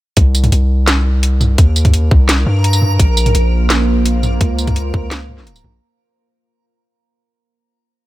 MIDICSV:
0, 0, Header, 1, 5, 480
1, 0, Start_track
1, 0, Tempo, 352941
1, 233, Time_signature, 4, 2, 24, 8
1, 10971, End_track
2, 0, Start_track
2, 0, Title_t, "Synth texture"
2, 0, Program_c, 0, 99
2, 232, Note_on_c, 0, 70, 76
2, 7922, Note_off_c, 0, 70, 0
2, 10971, End_track
3, 0, Start_track
3, 0, Title_t, "Ambient pad"
3, 0, Program_c, 1, 92
3, 4065, Note_on_c, 1, 58, 83
3, 4067, Note_on_c, 1, 65, 75
3, 4067, Note_on_c, 1, 72, 93
3, 7870, Note_off_c, 1, 58, 0
3, 7871, Note_off_c, 1, 65, 0
3, 7871, Note_off_c, 1, 72, 0
3, 10971, End_track
4, 0, Start_track
4, 0, Title_t, "808-style bass"
4, 0, Program_c, 2, 38
4, 231, Note_on_c, 2, 36, 88
4, 693, Note_off_c, 2, 36, 0
4, 712, Note_on_c, 2, 36, 90
4, 2133, Note_off_c, 2, 36, 0
4, 2155, Note_on_c, 2, 39, 86
4, 2855, Note_off_c, 2, 39, 0
4, 2876, Note_on_c, 2, 36, 96
4, 3335, Note_off_c, 2, 36, 0
4, 3352, Note_on_c, 2, 43, 93
4, 4053, Note_off_c, 2, 43, 0
4, 4073, Note_on_c, 2, 34, 91
4, 4534, Note_off_c, 2, 34, 0
4, 4550, Note_on_c, 2, 34, 89
4, 5972, Note_off_c, 2, 34, 0
4, 5994, Note_on_c, 2, 37, 90
4, 6694, Note_off_c, 2, 37, 0
4, 6716, Note_on_c, 2, 37, 95
4, 7655, Note_off_c, 2, 37, 0
4, 7675, Note_on_c, 2, 34, 94
4, 7895, Note_off_c, 2, 34, 0
4, 10971, End_track
5, 0, Start_track
5, 0, Title_t, "Drums"
5, 227, Note_on_c, 9, 42, 82
5, 231, Note_on_c, 9, 36, 115
5, 363, Note_off_c, 9, 42, 0
5, 367, Note_off_c, 9, 36, 0
5, 471, Note_on_c, 9, 54, 63
5, 594, Note_on_c, 9, 42, 38
5, 594, Note_on_c, 9, 45, 54
5, 607, Note_off_c, 9, 54, 0
5, 710, Note_off_c, 9, 42, 0
5, 710, Note_on_c, 9, 42, 66
5, 730, Note_off_c, 9, 45, 0
5, 846, Note_off_c, 9, 42, 0
5, 1190, Note_on_c, 9, 38, 127
5, 1190, Note_on_c, 9, 42, 88
5, 1326, Note_off_c, 9, 38, 0
5, 1326, Note_off_c, 9, 42, 0
5, 1672, Note_on_c, 9, 42, 71
5, 1808, Note_off_c, 9, 42, 0
5, 1913, Note_on_c, 9, 45, 53
5, 1913, Note_on_c, 9, 54, 36
5, 2049, Note_off_c, 9, 45, 0
5, 2049, Note_off_c, 9, 54, 0
5, 2152, Note_on_c, 9, 42, 86
5, 2153, Note_on_c, 9, 36, 120
5, 2288, Note_off_c, 9, 42, 0
5, 2289, Note_off_c, 9, 36, 0
5, 2393, Note_on_c, 9, 54, 64
5, 2514, Note_on_c, 9, 42, 40
5, 2514, Note_on_c, 9, 45, 55
5, 2516, Note_on_c, 9, 36, 65
5, 2529, Note_off_c, 9, 54, 0
5, 2632, Note_off_c, 9, 42, 0
5, 2632, Note_on_c, 9, 42, 69
5, 2650, Note_off_c, 9, 45, 0
5, 2652, Note_off_c, 9, 36, 0
5, 2768, Note_off_c, 9, 42, 0
5, 2874, Note_on_c, 9, 36, 115
5, 3010, Note_off_c, 9, 36, 0
5, 3112, Note_on_c, 9, 38, 122
5, 3112, Note_on_c, 9, 42, 90
5, 3248, Note_off_c, 9, 38, 0
5, 3248, Note_off_c, 9, 42, 0
5, 3354, Note_on_c, 9, 45, 36
5, 3490, Note_off_c, 9, 45, 0
5, 3593, Note_on_c, 9, 42, 70
5, 3714, Note_on_c, 9, 54, 61
5, 3729, Note_off_c, 9, 42, 0
5, 3831, Note_on_c, 9, 45, 50
5, 3850, Note_off_c, 9, 54, 0
5, 3967, Note_off_c, 9, 45, 0
5, 4073, Note_on_c, 9, 36, 122
5, 4074, Note_on_c, 9, 42, 89
5, 4209, Note_off_c, 9, 36, 0
5, 4210, Note_off_c, 9, 42, 0
5, 4311, Note_on_c, 9, 54, 64
5, 4434, Note_on_c, 9, 42, 38
5, 4434, Note_on_c, 9, 45, 51
5, 4447, Note_off_c, 9, 54, 0
5, 4552, Note_off_c, 9, 42, 0
5, 4552, Note_on_c, 9, 42, 68
5, 4570, Note_off_c, 9, 45, 0
5, 4688, Note_off_c, 9, 42, 0
5, 5033, Note_on_c, 9, 38, 127
5, 5033, Note_on_c, 9, 42, 81
5, 5169, Note_off_c, 9, 38, 0
5, 5169, Note_off_c, 9, 42, 0
5, 5515, Note_on_c, 9, 42, 72
5, 5651, Note_off_c, 9, 42, 0
5, 5754, Note_on_c, 9, 45, 50
5, 5754, Note_on_c, 9, 54, 33
5, 5890, Note_off_c, 9, 45, 0
5, 5890, Note_off_c, 9, 54, 0
5, 5994, Note_on_c, 9, 42, 81
5, 5996, Note_on_c, 9, 36, 120
5, 6130, Note_off_c, 9, 42, 0
5, 6132, Note_off_c, 9, 36, 0
5, 6236, Note_on_c, 9, 54, 66
5, 6357, Note_on_c, 9, 42, 38
5, 6357, Note_on_c, 9, 45, 52
5, 6358, Note_on_c, 9, 36, 68
5, 6372, Note_off_c, 9, 54, 0
5, 6474, Note_off_c, 9, 42, 0
5, 6474, Note_on_c, 9, 42, 67
5, 6493, Note_off_c, 9, 45, 0
5, 6494, Note_off_c, 9, 36, 0
5, 6610, Note_off_c, 9, 42, 0
5, 6716, Note_on_c, 9, 36, 116
5, 6852, Note_off_c, 9, 36, 0
5, 6954, Note_on_c, 9, 38, 127
5, 6954, Note_on_c, 9, 42, 80
5, 7090, Note_off_c, 9, 38, 0
5, 7090, Note_off_c, 9, 42, 0
5, 7197, Note_on_c, 9, 45, 37
5, 7317, Note_on_c, 9, 38, 39
5, 7333, Note_off_c, 9, 45, 0
5, 7436, Note_on_c, 9, 42, 69
5, 7453, Note_off_c, 9, 38, 0
5, 7557, Note_on_c, 9, 54, 64
5, 7572, Note_off_c, 9, 42, 0
5, 7676, Note_on_c, 9, 45, 49
5, 7693, Note_off_c, 9, 54, 0
5, 7812, Note_off_c, 9, 45, 0
5, 10971, End_track
0, 0, End_of_file